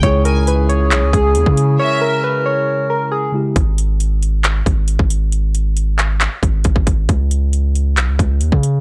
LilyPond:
<<
  \new Staff \with { instrumentName = "Violin section" } { \time 4/4 \key cis \dorian \tempo 4 = 136 r8 gis''8 r2. | e''4 r2. | r1 | r1 |
r1 | }
  \new Staff \with { instrumentName = "Synth keys" } { \time 4/4 \key cis \dorian cis''8 ais'8 b'8 cis''4 gis'4. | cis''8 ais'8 b'8 cis''4 ais'8 gis'8 r8 | r1 | r1 |
r1 | }
  \new Staff \with { instrumentName = "Woodwind section" } { \time 4/4 \key cis \dorian << { gis'1 | ais'1 | r1 | r1 |
r1 | } \\ { <cis cis' e'>1~ | <cis cis' e'>1 | r1 | r1 |
r1 | } >> }
  \new Staff \with { instrumentName = "Tine electric piano" } { \time 4/4 \key cis \dorian <cis gis e' gis'>1~ | <cis gis e' gis'>2.~ <cis gis e' gis'>8 <cis gis e' g'>8 | r1 | r1 |
r1 | }
  \new Staff \with { instrumentName = "808-style bass" } { \clef bass \time 4/4 \key cis \dorian cis,2 b,,16 cis,16 cis,8 dis,16 cis8. | r1 | gis,,2~ gis,,8 gis,,8. gis,,8.~ | gis,,2~ gis,,16 r16 gis,,8 gis,,16 gis,,16 gis,,8 |
cis,2 b,,16 cis,16 cis,8 dis,16 cis8. | }
  \new DrumStaff \with { instrumentName = "Drums" } \drummode { \time 4/4 <hh bd>8 hh8 hh8 hh8 <hc hh>8 <hh bd>8 hh16 bd16 hh8 | r4 r4 r4 r4 | <hh bd>8 hh8 hh8 hh8 <hc hh>8 <hh bd>8 hh16 bd16 hh8 | hh8 hh8 hh8 <hc hh>8 <hc hh>8 <hh bd>8 <hh bd>16 bd16 <hh bd>8 |
<hh bd>8 hh8 hh8 hh8 <hc hh>8 <hh bd>8 hh16 bd16 hh8 | }
>>